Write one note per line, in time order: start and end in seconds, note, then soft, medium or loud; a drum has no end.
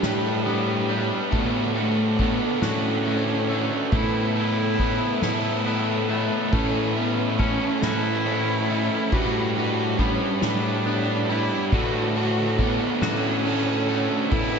0.00 0.90 A2 medium
0.00 1.09 A2 medium
0.00 0.45 G3 medium
0.00 1.29 G3 medium
0.00 0.45 B3 medium
0.00 1.30 G4 medium
0.00 0.47 B4 medium
0.00 0.46 C#5 medium
0.00 3.89 F#5 medium
0.00 1.30 B5 medium
0.00 snare loud
0.00 ride loud
0.04 0.46 D4 medium
0.04 0.46 G4 medium
0.46 1.30 G3 medium
0.46 1.33 B3 medium
0.46 0.90 D4 medium
0.46 0.89 G4 medium
0.46 0.89 B4 medium
0.46 0.88 B4 medium
0.46 ride medium
0.88 1.33 G3 medium
0.88 1.31 D4 medium
0.88 1.31 G4 medium
0.88 1.30 B4 medium
0.88 1.32 C#5 medium
0.88 ride medium
1.32 3.92 A2 medium
1.32 2.39 A2 medium
1.32 2.19 A3 medium
1.32 1.73 B3 medium
1.32 1.77 D4 loud
1.32 1.76 F#4 loud
1.32 3.90 A4 medium
1.32 1.76 A4 loud
1.32 1.76 B4 medium
1.32 3.90 D6 medium
1.32 kick loud
1.32 ride loud
1.75 2.17 A3 medium
1.75 2.19 D4 medium
1.75 2.20 F#4 medium
1.75 2.18 A4 medium
1.75 2.21 A4 medium
1.75 ride medium
2.19 3.06 A3 medium
2.19 2.65 B3 medium
2.19 2.65 D4 medium
2.19 2.64 F#4 medium
2.19 3.04 A4 medium
2.19 2.63 A4 medium
2.19 kick medium
2.19 ride medium
2.62 3.68 A2 medium
2.62 3.92 C#4 loud
2.62 3.06 D4 medium
2.62 3.92 F#4 medium
2.62 3.07 F#4 medium
2.62 3.08 A4 medium
2.62 snare loud
2.62 ride medium
3.06 3.92 A3 medium
3.06 3.51 D4 medium
3.06 3.50 F#4 medium
3.06 3.50 A4 medium
3.06 ride medium
3.48 4.83 A3 medium
3.48 3.91 D4 medium
3.48 3.91 F#4 medium
3.48 3.94 A4 medium
3.48 3.91 B4 medium
3.48 ride medium
3.92 4.98 A2 medium
3.92 6.09 A2 medium
3.92 4.78 A3 loud
3.92 4.37 B3 medium
3.92 4.33 E4 loud
3.92 4.36 E4 medium
3.92 9.08 A4 medium
3.92 4.35 A4 loud
3.92 4.79 B4 loud
3.92 6.50 E5 medium
3.92 6.50 B5 medium
3.92 kick loud
3.92 ride loud
4.35 4.78 B3 medium
4.35 5.25 E4 loud
4.35 4.80 E4 medium
4.35 4.80 A4 medium
4.35 ride medium
4.79 5.64 A3 medium
4.79 5.23 B3 medium
4.79 5.65 B3 medium
4.79 5.22 E4 medium
4.79 5.21 A4 medium
4.79 kick medium
4.79 ride medium
5.22 6.28 A2 medium
5.22 6.55 A3 medium
5.22 5.64 B3 medium
5.22 6.53 E4 medium
5.22 5.65 E4 medium
5.22 5.65 A4 medium
5.22 5.66 C#5 medium
5.22 snare loud
5.22 ride loud
5.65 6.50 A3 medium
5.65 6.09 B3 medium
5.65 6.53 B3 medium
5.65 6.09 E4 medium
5.65 6.07 A4 medium
5.65 6.09 B4 medium
5.65 ride medium
6.08 6.53 A3 medium
6.08 6.51 B3 medium
6.08 6.50 E4 medium
6.08 6.50 A4 medium
6.08 6.53 C#5 medium
6.08 ride medium
6.51 7.59 A2 loud
6.51 8.69 A2 medium
6.51 7.37 A3 loud
6.51 6.96 C#4 loud
6.51 6.95 E4 medium
6.51 6.94 A4 medium
6.51 6.96 B4 medium
6.51 11.68 F#5 medium
6.51 9.10 C#6 medium
6.51 kick loud
6.51 ride loud
6.95 7.37 B3 medium
6.95 7.38 C#4 medium
6.95 7.38 E4 medium
6.95 7.39 A4 medium
6.95 7.37 A4 medium
6.95 ride medium
7.38 8.24 A3 medium
7.38 7.82 C#4 medium
7.38 8.25 C#4 medium
7.38 7.84 C#4 medium
7.38 7.81 E4 medium
7.38 8.24 A4 medium
7.38 7.80 A4 medium
7.38 kick medium
7.38 ride medium
7.82 8.88 A2 medium
7.82 8.26 C#4 medium
7.82 8.26 E4 medium
7.82 9.15 E4 loud
7.82 11.32 F#4 medium
7.82 8.27 A4 medium
7.82 snare loud
7.82 ride medium
8.25 9.10 A3 medium
8.25 9.13 C#4 medium
8.25 8.70 C#4 medium
8.25 8.69 E4 medium
8.25 8.69 A4 medium
8.25 8.68 A4 medium
8.25 ride medium
8.69 9.13 A3 medium
8.69 9.11 C#4 medium
8.69 9.10 E4 medium
8.69 9.10 A4 medium
8.69 ride medium
9.12 10.18 A2 loud
9.12 11.29 A2 medium
9.12 9.98 G3 medium
9.12 11.70 G3 medium
9.12 9.57 D4 loud
9.12 9.56 F#4 loud
9.12 9.56 G4 loud
9.12 9.99 B4 medium
9.12 9.54 B4 medium
9.12 11.70 B5 medium
9.12 kick loud
9.12 crash medium
9.56 10.00 D4 medium
9.56 10.00 F#4 medium
9.56 10.00 G4 medium
9.56 10.00 B4 medium
9.56 ride medium
9.98 10.85 G3 medium
9.98 10.85 B3 medium
9.98 10.43 C#4 medium
9.98 10.43 D4 medium
9.98 10.42 G4 medium
9.98 10.41 B4 medium
9.98 kick medium
9.98 ride medium
10.42 11.48 A2 medium
10.42 11.32 D4 loud
10.42 10.86 D4 medium
10.42 10.86 G4 medium
10.42 10.87 B4 medium
10.42 10.86 C#5 medium
10.42 snare loud
10.42 ride medium
10.85 11.70 G3 medium
10.85 11.72 B3 medium
10.85 11.31 D4 medium
10.85 11.30 G4 medium
10.85 11.29 B4 medium
10.85 ride medium
11.28 11.72 G3 medium
11.28 11.71 D4 medium
11.28 11.71 E4 loud
11.28 11.70 G4 medium
11.28 11.70 B4 medium
11.28 11.72 C#5 medium
11.28 ride medium
11.72 12.78 A2 medium
11.72 14.32 A2 medium
11.72 12.58 A3 medium
11.72 12.16 D4 loud
11.72 12.12 F#4 loud
11.72 12.15 F#4 loud
11.72 14.29 A4 medium
11.72 12.15 A4 loud
11.72 12.15 B4 medium
11.72 14.29 F#5 medium
11.72 14.29 D6 medium
11.72 kick loud
11.72 ride medium
12.15 12.58 D4 medium
12.15 12.61 F#4 loud
12.15 12.59 F#4 medium
12.15 12.60 A4 medium
12.15 12.58 A4 medium
12.15 ride medium
12.58 13.45 A3 medium
12.58 13.03 B3 medium
12.58 13.03 D4 medium
12.58 13.02 F#4 medium
12.58 13.44 A4 medium
12.58 13.02 A4 medium
12.58 kick medium
12.58 ride medium
13.02 14.08 A2 medium
13.02 14.32 C#4 loud
13.02 13.44 D4 medium
13.02 14.32 F#4 medium
13.02 13.45 F#4 medium
13.02 13.46 A4 medium
13.02 snare loud
13.02 ride loud
13.45 14.30 A3 medium
13.45 13.88 D4 medium
13.45 13.88 F#4 medium
13.45 13.89 A4 medium
13.45 13.88 A4 medium
13.45 ride medium
13.88 14.59 A3 medium
13.88 14.30 D4 medium
13.88 14.29 F#4 medium
13.88 14.32 A4 medium
13.88 14.30 B4 medium
13.88 ride medium
14.31 14.59 A2 loud
14.31 14.59 A2 medium
14.31 14.59 A3 loud
14.31 14.59 B3 medium
14.31 14.59 E4 loud
14.31 14.59 A4 medium
14.31 14.59 A4 loud
14.31 14.59 B4 loud
14.31 14.59 E5 medium
14.31 kick loud
14.31 ride loud